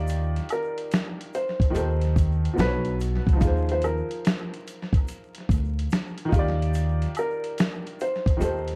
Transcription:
Already playing: D#2 D#3 D#4 F4 G4 D5
0.07 closed hi-hat, shaker
0.36 closed hi-hat
0.49 A#4, closed hi-hat, high woodblock, shaker
0.78 closed hi-hat
0.91 finger snap, snare, closed hi-hat, shaker
1.21 closed hi-hat
1.34 C5, closed hi-hat, shaker
1.60 kick, closed hi-hat
1.70 D#3 D#4 G4
1.75 D#2 A4 C5, closed hi-hat, shaker
2.01 closed hi-hat
2.16 kick, closed hi-hat, shaker
2.45 closed hi-hat
2.53 B2 B3 D#4
2.58 B1 A4 B4 C5, finger snap, snare, closed hi-hat, shaker
2.67 C#5
2.85 closed hi-hat
3.00 closed hi-hat, shaker
3.27 C#2, kick, closed hi-hat
3.33 F3 D#4
3.40 D#2 F4 G#4, kick, closed hi-hat, shaker
3.47 C5
3.69 C5, closed hi-hat
3.82 A#4, closed hi-hat, high woodblock, shaker
4.11 closed hi-hat
4.25 finger snap, snare, closed hi-hat, shaker
4.54 closed hi-hat
4.67 closed hi-hat, shaker
4.93 kick, closed hi-hat
5.08 closed hi-hat, shaker
5.35 closed hi-hat
5.49 D2, kick, closed hi-hat, shaker
5.79 closed hi-hat
5.90 finger snap, snare, closed hi-hat, shaker
6.18 closed hi-hat
6.25 D#3 D#4
6.32 D#2 F4 G4, kick, closed hi-hat, shaker
6.39 D5
6.62 closed hi-hat
6.74 closed hi-hat, shaker
7.02 closed hi-hat
7.15 closed hi-hat, high woodblock, shaker
7.19 A#4
7.44 closed hi-hat
7.58 finger snap, snare, closed hi-hat, shaker
7.87 closed hi-hat
8.00 C5, closed hi-hat, shaker
8.26 kick, closed hi-hat
8.37 D#2 D#3 D#4 G4
8.41 A4 C5, closed hi-hat, shaker
8.68 closed hi-hat

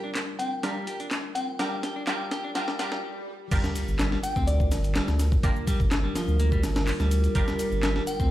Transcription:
Already playing: G3 D4 F4 G4 A#4
0.04 D4
0.15 snare, clap, closed hi-hat
0.39 C4 G5, closed hi-hat
0.63 G3 D4 F4 G4 A#4, snare, closed hi-hat
0.87 G4, closed hi-hat
1.00 D4, closed hi-hat
1.11 snare, clap, closed hi-hat
1.35 C4 G5, closed hi-hat
1.59 G3 D4 F4 G4 A#4 G5, snare, closed hi-hat
1.83 G4, snare, closed hi-hat
1.96 D4
2.07 G3 D4 F4 G4 A#4 G5, snare, clap, closed hi-hat
2.31 G4, snare, closed hi-hat
2.44 D4
2.55 G3 D4 F4 G4 A#4 G5, snare, closed hi-hat, swell
2.68 snare
2.79 G3 D4 F4 G4 A#4 G5, snare, closed hi-hat
2.92 snare
3.51 G1 G3 D4 F4 G4 A#4, kick, closed hi-hat, crash, sub drop, shaker
3.64 snare, shaker
3.75 closed hi-hat, ride, shaker
3.88 G1, shaker
3.99 G3, snare, clap, closed hi-hat, shaker
4.12 G3, snare
4.23 G5, closed hi-hat, ride, shaker
4.36 D2 C4, kick, shaker
4.47 D5, closed hi-hat, shaker
4.60 kick, shaker
4.71 G1, snare, closed hi-hat, ride, shaker
4.84 closed hi-hat, shaker
4.95 G3, snare, clap, closed hi-hat, shaker
5.08 D2, snare, shaker
5.19 snare, closed hi-hat, ride, shaker
5.32 kick, shaker
5.43 G1 A#3 D4 F4 G4 A#4, kick, closed hi-hat, shaker
5.56 shaker
5.67 G3, kick, closed hi-hat, ride, shaker
5.80 G1, kick, shaker
5.91 snare, clap, closed hi-hat, shaker
6.04 G3
6.15 F3, snare, closed hi-hat, ride, shaker
6.28 D2, shaker
6.39 A#3, closed hi-hat, shaker
6.52 G3, kick, shaker
6.63 G1, snare, closed hi-hat, ride, shaker
6.76 snare, shaker
6.87 clap, open hi-hat, shaker
7.00 D2 G3, snare, shaker
7.11 closed hi-hat, ride, shaker
7.24 closed hi-hat, shaker
7.35 G1 G3 D4 F4 G4 A#4, kick, closed hi-hat, shaker
7.48 snare, shaker
7.59 closed hi-hat, ride, shaker
7.72 G1, shaker
7.83 G3, snare, clap, closed hi-hat, shaker
7.96 G3, snare
8.07 G5, closed hi-hat, ride, shaker
8.20 D2 C4, kick, shaker

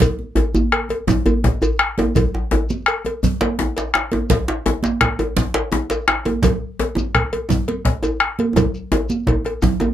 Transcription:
0.00 bombo low, cowbell, djembe tone, low conga, djembe bass, shekere
0.19 djembe slap, high conga
0.35 bombo rim, cowbell, djembe slap, djembe tone, djembe bass
0.55 high conga, djembe bass, shekere
0.72 bombo rim, cowbell, djembe slap
0.89 cowbell, djembe tone, high conga
1.07 bombo rim, high conga, djembe tone, djembe bass, low conga, shekere
1.26 cowbell, high conga, djembe bass, shekere
1.44 bombo rim, bombo low, djembe slap, high conga, djembe tone, shekere
1.62 cowbell, djembe bass, shekere
1.79 bombo rim
1.98 cowbell, high conga, djembe tone
2.15 bombo low, cowbell, djembe slap, high conga, djembe bass, low conga, shekere
2.34 djembe tone
2.51 cowbell, djembe slap, djembe tone, djembe bass
2.69 djembe slap, high conga, shekere
2.86 bombo rim, cowbell, djembe slap, shekere
3.05 cowbell, djembe slap, djembe tone
3.23 djembe bass, low conga, shekere
3.41 cowbell, djembe slap, high conga
3.59 bombo rim, djembe slap, djembe tone
3.77 cowbell, djembe slap, high conga, shekere
3.94 bombo rim, djembe slap
4.12 cowbell, high conga, djembe tone
4.30 bombo low, cowbell, djembe slap, high conga, low conga, djembe bass, shekere
4.48 djembe slap
4.66 cowbell, djembe slap, djembe tone
4.83 djembe slap, high conga, shekere
5.01 bombo rim, bombo low, cowbell, djembe slap
5.19 cowbell, djembe slap, djembe tone
5.37 djembe slap, low conga, djembe bass, shekere
5.54 cowbell, djembe slap
5.72 bombo rim, djembe slap, djembe tone
5.90 cowbell, djembe slap, high conga, shekere
6.08 bombo rim, djembe slap
6.25 cowbell, djembe tone, high conga
6.42 bombo low, cowbell, djembe slap, high conga, low conga, shekere
6.44 djembe slap, djembe bass
6.79 cowbell, djembe slap, djembe tone
6.95 djembe slap, djembe tone, high conga, shekere
7.15 bombo rim, bombo low, cowbell, djembe slap, shekere
7.33 cowbell, djembe slap, djembe tone
7.49 djembe tone, djembe bass, low conga, shekere
7.68 cowbell, high conga
7.85 bombo rim, bombo low, djembe slap, djembe tone
8.03 cowbell, djembe tone, high conga, shekere
8.20 bombo rim, djembe slap
8.39 cowbell, high conga
8.56 bombo rim, bombo low, cowbell, djembe slap, djembe tone, high conga, djembe bass, low conga, shekere
8.74 djembe slap, shekere
8.92 cowbell, djembe slap, djembe tone, shekere
9.10 high conga, shekere
9.27 bombo low, cowbell, djembe tone
9.45 bombo rim, cowbell, djembe tone
9.62 bombo rim, djembe tone, djembe bass, low conga, shekere
9.80 cowbell, djembe tone, high conga, shekere

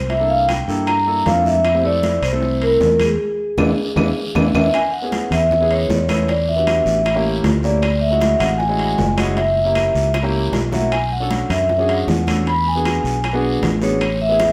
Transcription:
Already playing: C2 C5
0.09 E5, high bongo, high conga, high timbale, long guiro
0.19 A#3 D4 E4 A4
0.29 F5, high bongo, high conga
0.48 G5, high bongo, high conga, high timbale, low timbale, short guiro, claves
0.68 G2 A#3 D4 E4 A4 G5, short guiro
0.87 A#5, high bongo, high conga, high timbale, long guiro, claves
1.06 A#3 D4 E4 A4, high bongo, high conga
1.26 F2 A#3 D4 E4 A4 F5, high bongo, low bongo, high conga, high timbale, low timbale, short guiro
1.45 E5, high bongo, high conga, short guiro
1.65 high bongo, high conga, high timbale, long guiro, claves
1.75 A3 C4 E4 G4 C5
1.84 A3 C4 E4 A4 D5, high conga
2.03 high bongo, high conga, high timbale, low timbale, short guiro
2.22 C2 C5, high timbale, short guiro, claves
2.32 A3 C4 E4 A4
2.42 high bongo, high conga, long guiro
2.61 A#4, high conga, high timbale
2.80 E2, high bongo, low bongo, high conga, low timbale, short guiro
3.00 G#4, high conga, high timbale, short guiro, claves
3.57 E2 B3 D4 E4, low bongo, high conga, high timbale, long guiro, claves
3.96 E2 B3 D4 E4, low bongo, high conga, high timbale, long guiro, claves
4.35 E2 B3 D4 E4, low bongo, high conga, high timbale, claves
4.54 E2 B3 D4 E4 E5, low bongo, high conga, high timbale, long guiro, claves
4.74 G#5, high bongo, high conga, high timbale, long guiro, claves
4.92 F#5, high conga
5.02 B3 C#4 E4 G#4
5.12 high bongo, high conga, high timbale, low timbale, short guiro
5.31 E2 E5, low conga, high timbale, short guiro, claves
5.51 high bongo, high conga, low conga, long guiro
5.60 B3 C#4 E4 G#4
5.71 C#5, high conga, high timbale
5.89 E2, high bongo, low bongo, high conga, low timbale, short guiro
6.09 B3 C#4 E4 A4, high conga, high timbale, short guiro, claves
6.28 D5, high bongo, high conga, high timbale, long guiro
6.48 E5, high bongo, high conga
6.56 B3 D4 F#4 G4
6.67 high bongo, high conga, high timbale, low timbale, short guiro, claves
6.85 A1, short guiro
7.05 high bongo, high conga, high timbale, long guiro, claves
7.14 A#3 C#4 E4 G4
7.25 high bongo, high conga
7.43 D2, high bongo, low bongo, high conga, high timbale, low timbale, short guiro
7.63 A#3 C#4 E4 G4 D5, high bongo, short guiro
7.82 high bongo, high conga, high timbale, long guiro, claves
8.01 E5, high conga
8.11 G#3 C#4 E4 F#4
8.21 high bongo, high conga, high timbale, low timbale, short guiro
8.39 A1 F#5, low conga, high timbale, short guiro, claves
8.58 G#5, high bongo, high conga, long guiro
8.68 G#3 C#4 E4 F#4
8.79 high conga, high timbale
8.98 F#1, high bongo, low bongo, high conga, low timbale, short guiro
9.17 G#3 C#4 E4 F#4, high conga, high timbale, short guiro, claves
9.35 E5, high bongo, high conga, high timbale, long guiro
9.56 high bongo, high conga
9.64 A#3 C#4 E4 G4
9.75 high bongo, high conga, high timbale, low timbale, short guiro, claves
9.95 C#2, short guiro
10.14 high bongo, high conga, high timbale, long guiro, claves
10.22 A#3 C#4 E4 G4
10.34 high conga
10.52 B1, low bongo, high conga, high timbale, low timbale, short guiro
10.72 A#3 C#4 E4 F#4 E5, low bongo, high conga, short guiro
10.92 G#5, high bongo, high conga, high timbale, long guiro, claves
11.12 F#5, high conga
11.20 C#4 D4 F#4 A4
11.31 high bongo, high conga, high timbale, low timbale, short guiro
11.50 F#2 E5, low conga, high timbale, short guiro, claves
11.69 high bongo, high conga, low conga, long guiro
11.78 C#4 D4 F#4 G#4
11.89 F#5, high conga, high timbale
12.07 E2, high bongo, low bongo, high conga, low timbale, short guiro
12.27 C#4 D4 F#4 A4, high conga, high timbale, short guiro, claves
12.46 B5, high bongo, high conga, high timbale, long guiro
12.66 G#5, high bongo, high conga
12.75 B3 D4 F#4 G#4
12.85 high bongo, high conga, high timbale, low timbale, short guiro, claves
13.04 B1, short guiro
13.24 high bongo, high conga, high timbale, long guiro, claves
13.33 B3 D4 F#4 G#4
13.43 high bongo, high conga
13.61 A1, high bongo, low bongo, high conga, high timbale, low timbale, short guiro
13.81 B3 D4 F#4 G#4 C#5, high bongo, short guiro
14.01 high bongo, high conga, high timbale, long guiro, claves
14.20 E5, high conga
14.29 B3 C#4 E4 G#4
14.40 high bongo, high conga, high timbale, low timbale, short guiro

